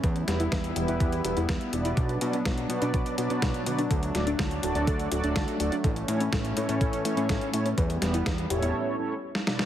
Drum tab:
HH |xxxxxxxxxxxxxxxx|xxxxxxxxxxxxxxxx|xxxxxxxxxxxxxxxx|xxxxxxxxxxxxxxxx|
SD |--o-o-------o---|----o-------o---|--o-o-------o---|----o-------o---|
BD |o---o---o---o---|o---o---o---o---|o---o---o---o---|o---o---o---o---|

HH |xxxxxxxx--------|
SD |--o-o--------ooo|
BD |o---o-----------|